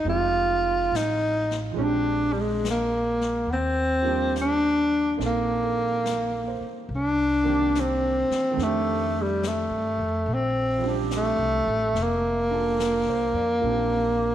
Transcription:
0.05 upright bass F1, grand piano F3 G#3 C4 D#4
0.09 tenor saxophone F4, grand piano G4, brush sweep
0.92 upright bass A1, snare, hi-hat pedal
0.96 tenor saxophone D#4
1.51 snare
1.71 grand piano F3 G#3
1.76 upright bass A#1, grand piano C4 D4, tenor saxophone C#4, brush sweep
1.82 tenor saxophone D4, grand piano G4
2.33 tenor saxophone G3
2.41 tenor saxophone G#3
2.65 snare, hi-hat pedal
2.70 tenor saxophone A#3
3.21 snare
3.47 upright bass D#2, tenor saxophone B3, brush sweep
3.53 tenor saxophone C4
4.02 grand piano F3 G3 A#3 D4
4.07 grand piano G4
4.36 snare, hi-hat pedal
4.41 tenor saxophone D4
5.17 upright bass A#1, grand piano A#3 C4 D#4 A4, brush sweep, snare
5.26 tenor saxophone A#3
5.62 grand piano A4
6.04 grand piano A#4, snare, hi-hat pedal
6.48 grand piano C5
6.60 muted upright bass stroke
6.89 upright bass C2, brush sweep
6.95 tenor saxophone D4
7.43 grand piano D#3 A#3 C4 D4
7.48 grand piano G4
7.75 snare, hi-hat pedal
7.80 tenor saxophone C4
8.29 muted upright bass stroke, snare
8.51 grand piano D#3 A3
8.57 upright bass F2, grand piano C4 D4, brush sweep, snare
8.63 tenor saxophone A3, grand piano G4
9.22 tenor saxophone G3
9.43 snare, hi-hat pedal
9.48 tenor saxophone A3
9.70 upright bass G2
9.98 upright bass F2
10.26 upright bass A#1, brush sweep
10.34 tenor saxophone C4
10.78 grand piano F3 G3
10.84 grand piano C4 D4
10.89 grand piano G4
11.11 snare, hi-hat pedal
11.17 tenor saxophone A3
11.36 upright bass C2
11.66 upright bass A1
11.94 upright bass F1, brush sweep, snare
12.03 tenor saxophone A#3
12.51 grand piano A#3 D4 F4 A4
12.79 grand piano A#4, snare, hi-hat pedal
13.07 upright bass C2, grand piano C5
13.33 upright bass F2, grand piano D5
13.60 upright bass A#1, grand piano F3 A#3
13.65 grand piano C4 D4, brush sweep
13.70 grand piano G4

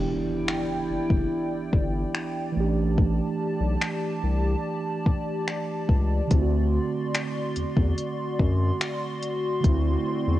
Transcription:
Already playing: sub bass E1, tine electric piano E3 B3 D4 G4, analog synth pad E4 D5 G5, impact
0.48 finger snap
0.90 sub bass F#1
1.10 sub bass F#1, kick
1.73 sub bass G1, kick
2.15 finger snap
2.52 tine electric piano E3 A3
2.56 sub bass A1, tine electric piano C#4, analog synth pad G4 A5
2.60 tine electric piano D4 G4
2.98 kick
3.60 sub bass B1
3.81 finger snap
4.23 sub bass C2
5.06 kick
5.48 finger snap
5.89 sub bass C#2, kick
6.27 sub bass D2, tine electric piano D3 A3, kick, closed hi-hat, swell
6.31 tine electric piano C4, analog synth pad F#4 C6
6.35 tine electric piano E4
6.42 tine electric piano F#4
7.14 finger snap, closed hi-hat
7.56 sub bass E2, closed hi-hat
7.77 sub bass E2, kick
7.98 closed hi-hat
8.39 sub bass F#2, kick
8.81 finger snap, closed hi-hat
9.23 closed hi-hat
9.60 tine electric piano D3 A3, kick, closed hi-hat
9.64 sub bass D2, tine electric piano C4
9.69 tine electric piano E4
10.27 sub bass E2

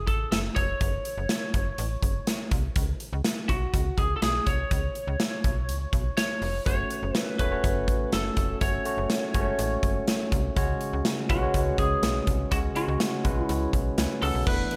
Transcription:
0.07 fm bass A1, lead electric guitar A4, kick, closed hi-hat
0.32 fm bass F#1, lead electric guitar A4, snare, closed hi-hat
0.56 fm bass F1, lead electric guitar C#5, kick, closed hi-hat
0.81 fm bass F#1, kick, closed hi-hat
1.05 closed hi-hat
1.17 fm bass F#1
1.29 snare, closed hi-hat
1.54 fm bass F#1, kick, closed hi-hat
1.78 fm bass A1, closed hi-hat
2.02 fm bass F#1, kick, closed hi-hat
2.27 snare, closed hi-hat
2.51 fm bass C2, kick, closed hi-hat
2.76 fm bass C#2, kick, closed hi-hat
3.00 closed hi-hat
3.13 fm bass C#2
3.24 snare, closed hi-hat
3.49 fm bass B1, lead electric guitar F#4, kick, closed hi-hat
3.74 fm bass C#2, kick, closed hi-hat
3.98 fm bass C#2, lead electric guitar G#4, kick, closed hi-hat
4.16 lead electric guitar A4
4.22 fm bass B1, lead electric guitar G#4, snare, closed hi-hat
4.47 fm bass C2, lead electric guitar C#5, kick, closed hi-hat
4.71 fm bass C#2, kick, closed hi-hat
4.95 closed hi-hat
5.07 fm bass C#2
5.20 snare, closed hi-hat
5.44 fm bass B1, kick, closed hi-hat
5.68 fm bass C#2, closed hi-hat
5.93 fm bass B1, kick, closed hi-hat
6.17 lead electric guitar C#5, snare, closed hi-hat
6.42 fm bass F1, open hi-hat
6.66 fm bass F#1, tine electric piano A3 C#4 F#4 C#5, lead electric guitar C#5, kick, closed hi-hat
6.90 closed hi-hat
7.03 fm bass F#1
7.15 lead electric guitar B4, snare, closed hi-hat
7.39 fm bass E1, tine electric piano A3 C#4 F#4 C#5, lead electric guitar B4, kick, closed hi-hat
7.51 tine electric piano A3 C#4 F#4 C#5
7.64 fm bass F#1, kick, closed hi-hat
7.88 fm bass A1, kick, closed hi-hat
8.12 fm bass F#1, lead electric guitar A4, snare, closed hi-hat
8.37 fm bass F1, kick, closed hi-hat
8.61 fm bass F#1, tine electric piano A3 C#4 F#4 C#5, lead electric guitar C#5, kick, closed hi-hat
8.85 tine electric piano A3 C#4 F#4 C#5, closed hi-hat
8.98 fm bass F#1
9.10 snare, closed hi-hat
9.34 fm bass F#1, tine electric piano G#3 C#4 F#4 C#5, kick, closed hi-hat
9.40 tine electric piano A3
9.59 fm bass A1, closed hi-hat
9.83 fm bass F#1, kick, closed hi-hat
10.08 snare, closed hi-hat
10.32 fm bass C2, kick, closed hi-hat
10.56 fm bass C#2, tine electric piano C#3 G#3 C#4 F#4 C#5, kick, closed hi-hat
10.81 closed hi-hat
10.93 fm bass C#2
11.05 snare, closed hi-hat
11.29 fm bass B1, tine electric piano G#3 C#4 F#4 B4, lead electric guitar F#4, kick, closed hi-hat
11.41 tine electric piano G#3 C#4 F#4 C#5
11.54 fm bass C#2, kick, closed hi-hat
11.78 fm bass C#2, lead electric guitar G#4, kick, closed hi-hat
12.03 fm bass B1, snare, closed hi-hat
12.27 fm bass C2, kick, closed hi-hat
12.51 fm bass C#2, tine electric piano C#3 G#3 C#4 F#4 C#5, lead electric guitar F#4, kick, closed hi-hat
12.75 tine electric piano G#3 C#4 F#4 C#5, lead electric guitar F#4, closed hi-hat
12.88 fm bass C#2
13.00 snare, closed hi-hat
13.24 fm bass B1, tine electric piano G#3 C#4 F#4 B4, kick, closed hi-hat
13.42 lead electric guitar E4
13.49 fm bass C#2, closed hi-hat
13.73 fm bass B1, kick, closed hi-hat
13.98 fm bass C#2, tine electric piano B4 G#5, snare, closed hi-hat
14.22 fm bass C#2, lead electric guitar A4, tine electric piano F#5, open hi-hat
14.35 fm bass B1
14.46 fm bass E1, tine electric piano E3 A3 B3 D4 E4 B4, lead electric guitar B4, kick, crash
14.71 closed hi-hat

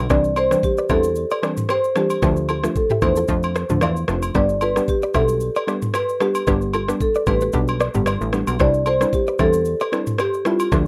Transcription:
0.10 analog synth bass C2, synth pluck E3 G3 C4 D4, clean electric guitar G4 D5, marimba D5, kick, cross-stick, shaker
0.24 shaker
0.36 clean electric guitar A4 C5, marimba C5, high agogo, shaker
0.51 synth pluck E3 G3 C4 D4, clean electric guitar A4 C5, cross-stick, shaker
0.63 marimba G4, kick, shaker
0.78 clean electric guitar B4 D5, shaker
0.89 analog synth bass E2, synth pluck E3 G3 C4 D4, marimba A4, clean electric guitar C5 E5, kick, cross-stick, high agogo, shaker
1.04 shaker
1.15 shaker
1.31 clean electric guitar B4 D5, high agogo, shaker
1.42 synth pluck E3 G3 C4 D4, clean electric guitar B4 D5, cross-stick, shaker
1.57 mid tom, shaker
1.69 clean electric guitar G4 C5, marimba C5, cross-stick, high agogo, shaker
1.84 shaker
1.96 synth pluck E3 G3 C4 D4, clean electric guitar F4 A4, marimba G4, cross-stick, shaker
2.10 high agogo, shaker
2.22 analog synth bass D2, synth pluck F3 A3 D4 F4, clean electric guitar D4 G4, kick, cross-stick, shaker
2.37 shaker
2.49 clean electric guitar F4 A4, high agogo, shaker
2.63 synth pluck F3 A3 D4 F4, clean electric guitar F4 A4, cross-stick, shaker
2.76 marimba A4, kick, shaker
2.90 clean electric guitar E4 G4, mid tom, shaker
3.02 analog synth bass E2, synth pluck F3 A3 D4 F4, marimba C5, kick, cross-stick, high agogo, shaker
3.16 clean electric guitar F4 A4, shaker
3.28 analog synth bass F2, synth pluck F3 A3 D4 F4, kick, shaker
3.43 high agogo, shaker
3.56 clean electric guitar A4 C5, cross-stick, shaker
3.69 analog synth bass D2, synth pluck F3 A3 D4 F4, mid tom, shaker
3.81 analog synth bass E2, clean electric guitar A4 D5, cross-stick, high agogo, low woodblock, shaker
3.96 shaker
4.08 analog synth bass F1, synth pluck F3 A3 D4 F4, cross-stick, shaker
4.22 high agogo, shaker
4.35 analog synth bass G1, synth pluck G3 B3 D4 G4, clean electric guitar G4 B4, marimba D5, kick, cross-stick, shaker
4.49 shaker
4.61 clean electric guitar F4 A4, marimba B4, high agogo, shaker
4.76 synth pluck G3 B3 D4 G4, clean electric guitar G4 B4, cross-stick, shaker
4.88 marimba G4, kick, shaker
5.02 clean electric guitar B4 D5, shaker
5.14 analog synth bass B1, synth pluck G3 B3 D4 G4, marimba A4, clean electric guitar C5 E5, kick, cross-stick, high agogo, shaker
5.29 shaker
5.40 shaker
5.55 clean electric guitar B4 D5, high agogo, shaker
5.67 synth pluck G3 B3 D4 G4, clean electric guitar B4 D5, cross-stick, shaker
5.82 mid tom, shaker
5.94 clean electric guitar G4 B4, marimba B4, cross-stick, high agogo, shaker
6.09 shaker
6.20 synth pluck G3 B3 D4 G4, clean electric guitar F4 A4, marimba G4, cross-stick, shaker
6.35 high agogo, shaker
6.47 analog synth bass G1, synth pluck G3 B3 D4 G4, clean electric guitar G4 B4, kick, cross-stick, shaker
6.62 shaker
6.74 clean electric guitar F4 A4, high agogo, shaker
6.88 synth pluck G3 B3 D4 G4, clean electric guitar G4 B4, cross-stick, shaker
7.01 marimba A4, kick, shaker
7.15 clean electric guitar B4 D5, shaker
7.26 analog synth bass A1, synth pluck G3 B3 D4 G4, marimba B4, kick, cross-stick, high agogo, shaker
7.41 clean electric guitar G4 B4, shaker
7.53 analog synth bass B1, synth pluck G3 B3 D4 G4, kick, shaker
7.68 high agogo, shaker
7.80 clean electric guitar B4 D5, cross-stick, shaker
7.94 analog synth bass G1, synth pluck G3 B3 D4 G4, mid tom, shaker
8.06 clean electric guitar B4 D5, cross-stick, high agogo, shaker
8.21 analog synth bass A1, shaker
8.33 synth pluck G3 B3 D4 G4, cross-stick, shaker
8.47 analog synth bass B1, high agogo, shaker
8.59 analog synth bass C2, synth pluck G3 C4 D4 E4, clean electric guitar G4 C5, marimba D5, kick, cross-stick, shaker
8.74 shaker
8.86 clean electric guitar F4 A4, marimba C5, high agogo, shaker
9.01 synth pluck G3 C4 D4 E4, clean electric guitar A4 C5, cross-stick, shaker
9.13 marimba G4, kick, shaker
9.27 clean electric guitar B4 D5, shaker
9.39 analog synth bass E2, synth pluck G3 C4 D4 E4, marimba A4, clean electric guitar C5 E5, kick, cross-stick, high agogo, shaker
9.53 shaker
9.65 shaker
9.80 clean electric guitar B4 D5, high agogo, shaker
9.92 synth pluck G3 C4 D4 E4, clean electric guitar B4 D5, cross-stick, shaker
10.07 mid tom, shaker
10.18 marimba G4, clean electric guitar G4 C5, cross-stick, high agogo, shaker
10.34 shaker
10.45 synth pluck G3 C4 D4 E4, clean electric guitar E4 G4, marimba F4, cross-stick, shaker
10.60 high agogo, shaker
10.72 analog synth bass D2, synth pluck F3 A3 D4 F4, clean electric guitar F4 A4, kick, cross-stick, shaker

